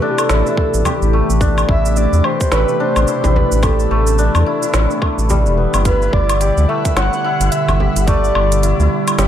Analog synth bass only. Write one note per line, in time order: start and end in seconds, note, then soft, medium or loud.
0.30 0.43 A1 loud
0.74 0.83 A1 medium
1.02 1.22 A1 loud
1.30 1.65 A1 medium
1.69 2.07 A1 loud
2.13 2.22 E2 medium
2.52 2.65 A1 loud
2.96 3.05 A1 medium
3.24 3.45 A1 medium
3.52 3.87 A1 medium
3.91 4.29 A1 medium
4.35 4.44 E2 medium
4.74 4.87 A1 loud
5.18 5.48 A1 medium
5.46 5.67 E1 medium
5.74 6.09 G1 medium
6.13 6.52 G1 medium
6.57 6.66 D2 medium
6.96 7.09 G1 loud
7.40 7.49 G1 medium
7.68 7.89 G1 medium
7.96 8.31 G1 medium
8.35 8.74 G1 medium
8.79 8.88 D2 medium
9.18 9.28 G1 loud